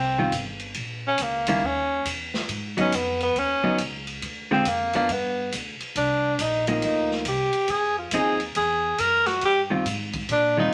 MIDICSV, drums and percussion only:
0, 0, Header, 1, 2, 480
1, 0, Start_track
1, 0, Key_signature, -3, "major"
1, 0, Tempo, 433213
1, 847, Time_signature, 4, 2, 24, 8
1, 11899, End_track
2, 0, Start_track
2, 0, Title_t, "Drums"
2, 356, Note_on_c, 9, 44, 58
2, 356, Note_on_c, 9, 51, 61
2, 357, Note_on_c, 9, 36, 23
2, 467, Note_off_c, 9, 44, 0
2, 467, Note_off_c, 9, 51, 0
2, 468, Note_off_c, 9, 36, 0
2, 659, Note_on_c, 9, 51, 42
2, 770, Note_off_c, 9, 51, 0
2, 825, Note_on_c, 9, 51, 54
2, 834, Note_on_c, 9, 36, 21
2, 935, Note_off_c, 9, 51, 0
2, 945, Note_off_c, 9, 36, 0
2, 1304, Note_on_c, 9, 44, 62
2, 1304, Note_on_c, 9, 51, 67
2, 1313, Note_on_c, 9, 36, 23
2, 1414, Note_off_c, 9, 44, 0
2, 1414, Note_off_c, 9, 51, 0
2, 1424, Note_off_c, 9, 36, 0
2, 1624, Note_on_c, 9, 51, 65
2, 1734, Note_off_c, 9, 51, 0
2, 1795, Note_on_c, 9, 36, 26
2, 1906, Note_off_c, 9, 36, 0
2, 2276, Note_on_c, 9, 36, 20
2, 2276, Note_on_c, 9, 44, 57
2, 2276, Note_on_c, 9, 51, 62
2, 2387, Note_off_c, 9, 36, 0
2, 2387, Note_off_c, 9, 44, 0
2, 2387, Note_off_c, 9, 51, 0
2, 2592, Note_on_c, 9, 38, 50
2, 2703, Note_off_c, 9, 38, 0
2, 2755, Note_on_c, 9, 51, 57
2, 2759, Note_on_c, 9, 36, 20
2, 2866, Note_off_c, 9, 51, 0
2, 2869, Note_off_c, 9, 36, 0
2, 3075, Note_on_c, 9, 51, 43
2, 3185, Note_off_c, 9, 51, 0
2, 3238, Note_on_c, 9, 44, 61
2, 3238, Note_on_c, 9, 51, 68
2, 3240, Note_on_c, 9, 36, 23
2, 3348, Note_off_c, 9, 44, 0
2, 3348, Note_off_c, 9, 51, 0
2, 3351, Note_off_c, 9, 36, 0
2, 3550, Note_on_c, 9, 51, 43
2, 3661, Note_off_c, 9, 51, 0
2, 3720, Note_on_c, 9, 36, 23
2, 3720, Note_on_c, 9, 51, 54
2, 3831, Note_off_c, 9, 36, 0
2, 3831, Note_off_c, 9, 51, 0
2, 4191, Note_on_c, 9, 44, 47
2, 4191, Note_on_c, 9, 51, 66
2, 4199, Note_on_c, 9, 36, 21
2, 4301, Note_off_c, 9, 44, 0
2, 4301, Note_off_c, 9, 51, 0
2, 4310, Note_off_c, 9, 36, 0
2, 4509, Note_on_c, 9, 51, 41
2, 4619, Note_off_c, 9, 51, 0
2, 4677, Note_on_c, 9, 51, 56
2, 4679, Note_on_c, 9, 36, 22
2, 4788, Note_off_c, 9, 51, 0
2, 4790, Note_off_c, 9, 36, 0
2, 5154, Note_on_c, 9, 44, 58
2, 5154, Note_on_c, 9, 51, 68
2, 5158, Note_on_c, 9, 36, 26
2, 5265, Note_off_c, 9, 44, 0
2, 5265, Note_off_c, 9, 51, 0
2, 5269, Note_off_c, 9, 36, 0
2, 5465, Note_on_c, 9, 51, 45
2, 5576, Note_off_c, 9, 51, 0
2, 5638, Note_on_c, 9, 51, 57
2, 5639, Note_on_c, 9, 36, 24
2, 5748, Note_off_c, 9, 51, 0
2, 5750, Note_off_c, 9, 36, 0
2, 6119, Note_on_c, 9, 36, 23
2, 6120, Note_on_c, 9, 44, 53
2, 6120, Note_on_c, 9, 51, 61
2, 6230, Note_off_c, 9, 36, 0
2, 6230, Note_off_c, 9, 44, 0
2, 6230, Note_off_c, 9, 51, 0
2, 6430, Note_on_c, 9, 51, 43
2, 6541, Note_off_c, 9, 51, 0
2, 6598, Note_on_c, 9, 51, 60
2, 6599, Note_on_c, 9, 36, 24
2, 6709, Note_off_c, 9, 51, 0
2, 6710, Note_off_c, 9, 36, 0
2, 7076, Note_on_c, 9, 44, 62
2, 7076, Note_on_c, 9, 51, 71
2, 7079, Note_on_c, 9, 36, 23
2, 7187, Note_off_c, 9, 44, 0
2, 7187, Note_off_c, 9, 51, 0
2, 7190, Note_off_c, 9, 36, 0
2, 7391, Note_on_c, 9, 51, 47
2, 7502, Note_off_c, 9, 51, 0
2, 7557, Note_on_c, 9, 51, 56
2, 7560, Note_on_c, 9, 36, 21
2, 7668, Note_off_c, 9, 51, 0
2, 7670, Note_off_c, 9, 36, 0
2, 7880, Note_on_c, 9, 38, 33
2, 7991, Note_off_c, 9, 38, 0
2, 8032, Note_on_c, 9, 44, 51
2, 8032, Note_on_c, 9, 51, 66
2, 8038, Note_on_c, 9, 36, 22
2, 8143, Note_off_c, 9, 44, 0
2, 8143, Note_off_c, 9, 51, 0
2, 8149, Note_off_c, 9, 36, 0
2, 8339, Note_on_c, 9, 51, 47
2, 8449, Note_off_c, 9, 51, 0
2, 8506, Note_on_c, 9, 51, 57
2, 8515, Note_on_c, 9, 36, 24
2, 8617, Note_off_c, 9, 51, 0
2, 8626, Note_off_c, 9, 36, 0
2, 8986, Note_on_c, 9, 44, 62
2, 8986, Note_on_c, 9, 51, 72
2, 8994, Note_on_c, 9, 36, 23
2, 9097, Note_off_c, 9, 44, 0
2, 9097, Note_off_c, 9, 51, 0
2, 9105, Note_off_c, 9, 36, 0
2, 9304, Note_on_c, 9, 51, 45
2, 9414, Note_off_c, 9, 51, 0
2, 9472, Note_on_c, 9, 51, 63
2, 9476, Note_on_c, 9, 36, 25
2, 9582, Note_off_c, 9, 51, 0
2, 9587, Note_off_c, 9, 36, 0
2, 9953, Note_on_c, 9, 44, 51
2, 9953, Note_on_c, 9, 51, 60
2, 9957, Note_on_c, 9, 36, 24
2, 10064, Note_off_c, 9, 44, 0
2, 10064, Note_off_c, 9, 51, 0
2, 10068, Note_off_c, 9, 36, 0
2, 10262, Note_on_c, 9, 51, 43
2, 10266, Note_on_c, 9, 38, 33
2, 10373, Note_off_c, 9, 51, 0
2, 10377, Note_off_c, 9, 38, 0
2, 10428, Note_on_c, 9, 51, 52
2, 10436, Note_on_c, 9, 36, 24
2, 10539, Note_off_c, 9, 51, 0
2, 10547, Note_off_c, 9, 36, 0
2, 10920, Note_on_c, 9, 36, 26
2, 10921, Note_on_c, 9, 44, 64
2, 10921, Note_on_c, 9, 51, 67
2, 11031, Note_off_c, 9, 36, 0
2, 11032, Note_off_c, 9, 44, 0
2, 11032, Note_off_c, 9, 51, 0
2, 11227, Note_on_c, 9, 51, 47
2, 11233, Note_on_c, 9, 36, 67
2, 11338, Note_off_c, 9, 51, 0
2, 11343, Note_off_c, 9, 36, 0
2, 11398, Note_on_c, 9, 51, 58
2, 11401, Note_on_c, 9, 36, 19
2, 11509, Note_off_c, 9, 51, 0
2, 11511, Note_off_c, 9, 36, 0
2, 11899, End_track
0, 0, End_of_file